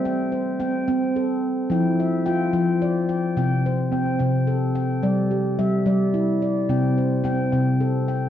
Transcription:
<<
  \new Staff \with { instrumentName = "Handpan" } { \time 6/8 \key c \major \tempo 4. = 72 << { <c'' e'' g''>8 c''4 g''4. | g''8 e''4 g''4 g''8 | g''8 c''4 g''4 g''8 | d''8 g'4 d''4 d''8 |
g''8 c''4 g''4 g''8 | } \\ { c'4 g''4 a'4 | e'4 g''4 d''4 | c'4 g''4 a'4 | r4 e''4 e'4 |
c'4 g''4 a'4 | } >> }
  \new Staff \with { instrumentName = "Handpan" } { \clef bass \time 6/8 \key c \major r4 c'8 c'4. | f8 r8 f'8 f4. | c8 r8 c'8 c4. | g8 r8 g8 g4. |
c8 r8 c'8 c4. | }
>>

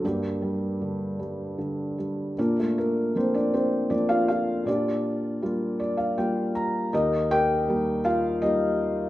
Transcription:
<<
  \new Staff \with { instrumentName = "Felt piano" } { \time 3/4 \key g \minor \tempo 4 = 79 << { r2. | r2. | r4. d''16 f''16 g''8 bes''8 | r2. | } \\ { <bes g'>2~ <bes g'>8 r8 | <bes d' f' bes'>16 <a a'>16 <bes bes'>8 <c' c''>16 <d' d''>16 <c' c''>8 d''16 <f' f''>16 <f' f''>8 | <d' f' g' d''>2~ <d' f' g' d''>8 r8 | <ees' g' bes' ees''>8 <g' bes' g''>4 <f' f''>8 <ees' g' ees''>4 | } >> }
  \new Staff \with { instrumentName = "Felt piano" } { \clef bass \time 3/4 \key g \minor g,8 g8 d8 g8 d8 g8 | bes,4 <f bes d'>4 <f bes d'>4 | bes,4 <g bes f'>4 <g bes f'>4 | ees,4 <g bes ees'>4 <g bes>4 | }
>>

